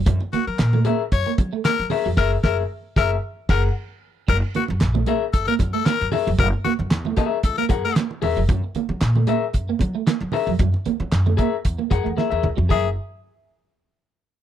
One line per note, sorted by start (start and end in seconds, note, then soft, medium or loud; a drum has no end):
0.06 0.18 F#2 loud
0.06 0.15 F#3 medium
0.06 kick loud
0.06 closed hi-hat medium
0.06 muted conga soft
0.06 low conga medium
0.20 muted clean electric guitar stroke soft
0.20 muted conga soft
0.33 0.41 A#3 medium
0.33 0.44 F#4 loud
0.33 muted upright bass stroke soft
0.33 closed hi-hat medium
0.33 high conga medium
0.47 0.57 F#3 medium
0.47 0.84 A#4 medium
0.58 0.81 A#2 loud
0.58 muted clean electric guitar stroke soft
0.58 snare loud
0.58 clap medium
0.58 closed hi-hat medium
0.73 0.81 A3 medium
0.73 muted conga soft
0.73 high conga medium
0.85 0.94 A#3 medium
0.85 1.02 G#4 medium
0.85 1.02 A#4 loud
0.85 1.03 E5 medium
0.85 closed hi-hat medium
0.85 low conga medium
1.12 1.23 F#2 loud
1.12 1.33 C#5 loud
1.12 kick medium
1.12 closed hi-hat medium
1.12 muted conga soft
1.26 1.33 A#3 medium
1.26 muted conga soft
1.38 1.50 F#3 medium
1.38 muted clean electric guitar stroke soft
1.38 kick loud
1.38 closed hi-hat medium
1.38 high conga medium
1.53 1.59 A3 medium
1.65 1.73 A#3 medium
1.65 1.86 A#4 loud
1.65 snare loud
1.65 clap medium
1.65 closed hi-hat medium
1.65 high conga medium
1.80 1.89 F#3 medium
1.90 2.07 G#4 medium
1.90 2.08 A#4 medium
1.90 2.08 E5 medium
1.90 muted clean electric guitar stroke soft
1.90 open hi-hat medium
1.90 high conga medium
1.90 low conga medium
2.06 2.17 F2 medium
2.06 2.13 F#3 medium
2.17 2.35 F#1 loud
2.17 2.35 G#4 loud
2.17 2.36 A#4 loud
2.17 2.31 A#4 loud
2.17 2.36 E5 loud
2.17 kick loud
2.17 snare loud
2.17 crash medium
2.44 2.62 F#1 medium
2.44 2.62 G#4 loud
2.44 2.57 A#4 medium
2.44 2.62 A#4 loud
2.44 2.63 E5 medium
2.44 kick loud
2.44 snare loud
2.96 3.15 F#1 loud
2.96 3.15 G#4 medium
2.96 3.15 A#4 loud
2.96 3.11 A#4 loud
2.96 3.15 E5 loud
2.96 kick loud
2.96 snare medium
3.49 3.67 F#1 loud
3.49 3.67 G#4 medium
3.49 3.68 A#4 medium
3.49 3.63 A#4 loud
3.49 3.68 F#5 loud
3.49 kick loud
3.49 snare loud
3.49 crash medium
4.28 4.40 F#1 loud
4.28 4.36 F#3 medium
4.28 4.37 A#4 loud
4.28 kick loud
4.28 crash medium
4.28 muted conga soft
4.28 low conga medium
4.42 muted clean electric guitar stroke soft
4.55 4.63 A#3 medium
4.55 4.64 F#4 medium
4.55 muted upright bass stroke soft
4.55 closed hi-hat medium
4.55 high conga medium
4.68 4.83 F#2 loud
4.68 high conga medium
4.80 5.02 A#1 medium
4.80 muted clean electric guitar stroke soft
4.80 snare loud
4.80 clap medium
4.80 closed hi-hat medium
4.80 muted conga soft
4.94 5.01 A3 medium
4.94 muted conga soft
4.94 high conga medium
5.06 5.15 A#3 medium
5.06 5.24 G#4 medium
5.06 5.24 A#4 medium
5.06 5.24 E5 medium
5.06 closed hi-hat medium
5.06 low conga medium
5.33 5.45 F#1 medium
5.33 5.44 A4 loud
5.33 kick medium
5.33 closed hi-hat medium
5.47 5.55 A#3 medium
5.47 5.55 A#4 loud
5.47 muted conga soft
5.59 5.71 F#2 medium
5.59 muted clean electric guitar stroke soft
5.59 kick loud
5.59 closed hi-hat medium
5.59 high conga medium
5.73 5.81 A3 medium
5.73 5.87 A4 loud
5.86 5.94 A#3 medium
5.86 6.07 A#4 loud
5.86 snare loud
5.86 clap medium
5.86 closed hi-hat medium
5.86 muted conga soft
5.86 high conga medium
6.01 6.11 F#2 medium
6.12 6.28 G#4 medium
6.12 6.29 A#4 medium
6.12 6.29 E5 medium
6.12 muted clean electric guitar stroke soft
6.12 open hi-hat medium
6.12 high conga medium
6.12 low conga medium
6.27 6.37 F1 loud
6.27 6.34 F#3 medium
6.38 6.50 F#1 loud
6.38 6.46 F#3 medium
6.38 6.48 A#4 loud
6.38 kick loud
6.38 closed hi-hat medium
6.38 muted conga soft
6.38 low conga medium
6.53 muted clean electric guitar stroke soft
6.65 6.73 A#3 medium
6.65 6.73 F#4 loud
6.65 muted upright bass stroke soft
6.65 closed hi-hat medium
6.65 high conga medium
6.79 6.91 F#2 medium
6.79 high conga medium
6.90 7.12 E2 medium
6.90 muted clean electric guitar stroke soft
6.90 snare loud
6.90 clap medium
6.90 closed hi-hat medium
7.05 7.13 A3 medium
7.05 high conga medium
7.17 7.26 A#3 medium
7.17 7.38 G#4 medium
7.17 7.38 A#4 loud
7.17 7.38 E5 loud
7.17 kick medium
7.17 closed hi-hat medium
7.17 low conga medium
7.43 7.55 C#2 loud
7.43 7.55 A4 loud
7.43 kick medium
7.43 closed hi-hat medium
7.57 7.65 A#3 medium
7.57 7.65 A#4 medium
7.57 muted conga soft
7.69 7.81 F#2 medium
7.69 7.86 G#4 medium
7.69 7.87 A#4 medium
7.69 7.87 F#5 medium
7.69 muted clean electric guitar stroke medium
7.69 kick loud
7.69 closed hi-hat medium
7.69 high conga medium
7.85 7.92 A3 medium
7.85 7.94 A#4 loud
7.96 8.05 A#3 medium
7.96 snare loud
7.96 clap medium
7.96 closed hi-hat medium
7.96 high conga medium
8.11 muted conga soft
8.22 8.34 E2 medium
8.22 8.39 G#4 medium
8.22 8.39 A#4 loud
8.22 8.40 E5 medium
8.22 muted clean electric guitar stroke soft
8.22 open hi-hat medium
8.22 high conga medium
8.22 low conga medium
8.37 8.47 F1 loud
8.37 8.44 F#3 medium
8.49 8.60 F#2 loud
8.49 8.57 F#3 medium
8.49 kick loud
8.49 closed hi-hat medium
8.49 muted conga soft
8.49 low conga medium
8.64 muted clean electric guitar stroke soft
8.75 8.83 A#3 medium
8.75 muted upright bass stroke soft
8.75 closed hi-hat medium
8.75 high conga medium
8.89 8.99 F#3 medium
8.89 high conga medium
9.01 9.23 A#2 loud
9.01 muted clean electric guitar stroke soft
9.01 snare loud
9.01 clap medium
9.01 closed hi-hat medium
9.15 9.23 A3 medium
9.15 high conga medium
9.27 9.37 A#3 loud
9.27 9.44 G#4 medium
9.27 9.45 A#4 medium
9.27 9.45 E5 loud
9.27 closed hi-hat medium
9.27 low conga medium
9.53 9.66 F#2 medium
9.53 kick medium
9.53 closed hi-hat medium
9.53 muted conga soft
9.69 9.76 A#3 medium
9.79 9.92 F#3 loud
9.79 muted clean electric guitar stroke soft
9.79 kick medium
9.79 closed hi-hat medium
9.79 high conga medium
9.95 10.02 A3 medium
10.07 10.15 A#3 medium
10.07 snare loud
10.07 clap medium
10.07 closed hi-hat loud
10.07 muted conga soft
10.07 high conga medium
10.21 10.31 F#3 medium
10.21 muted conga soft
10.32 10.49 G#4 medium
10.32 10.50 A#4 medium
10.32 10.50 E5 loud
10.32 muted clean electric guitar stroke soft
10.32 open hi-hat medium
10.32 high conga medium
10.32 low conga medium
10.47 10.57 F2 medium
10.47 10.55 F#3 medium
10.59 10.71 F#2 loud
10.59 10.68 F#3 medium
10.59 kick loud
10.59 closed hi-hat medium
10.59 low conga loud
10.74 muted clean electric guitar stroke soft
10.74 muted conga soft
10.86 10.94 A#3 medium
10.86 muted upright bass stroke soft
10.86 closed hi-hat medium
10.86 high conga medium
11.00 11.10 F#3 medium
11.00 high conga medium
11.12 11.33 F#2 loud
11.12 muted clean electric guitar stroke soft
11.12 snare medium
11.12 clap medium
11.12 closed hi-hat medium
11.26 11.33 A3 medium
11.26 high conga medium
11.37 11.47 A#3 medium
11.37 11.54 G#4 medium
11.37 11.55 A#4 medium
11.37 11.55 E5 medium
11.37 kick medium
11.37 closed hi-hat medium
11.37 low conga medium
11.65 11.76 E2 loud
11.65 kick medium
11.65 closed hi-hat medium
11.78 11.86 A#3 medium
11.78 muted conga soft
11.90 12.03 F#2 medium
11.90 12.08 G#4 medium
11.90 12.08 A#4 medium
11.90 12.08 F#5 medium
11.90 muted clean electric guitar stroke soft
11.90 kick medium
11.90 closed hi-hat medium
11.90 high conga medium
12.04 12.16 E2 medium
12.04 12.11 A3 medium
12.17 12.25 A#3 medium
12.17 12.30 G#4 medium
12.17 12.30 A#4 medium
12.17 12.29 E5 medium
12.17 snare medium
12.17 muted conga soft
12.17 high conga medium
12.30 12.42 E2 medium
12.30 12.47 G#4 medium
12.30 12.47 A#4 medium
12.30 12.46 E5 medium
12.30 muted conga soft
12.43 12.55 C#2 medium
12.43 muted clean electric guitar stroke soft
12.43 mid tom medium
12.43 high conga medium
12.43 low conga medium
12.57 12.68 F2 medium
12.57 12.64 F#3 medium
12.57 floor tom medium
12.69 12.95 F#1 loud
12.69 12.85 F#3 medium
12.69 12.86 G#4 medium
12.69 12.89 G#4 medium
12.69 12.87 A#4 medium
12.69 12.87 E5 medium
12.69 kick medium
12.69 crash medium
12.69 high conga medium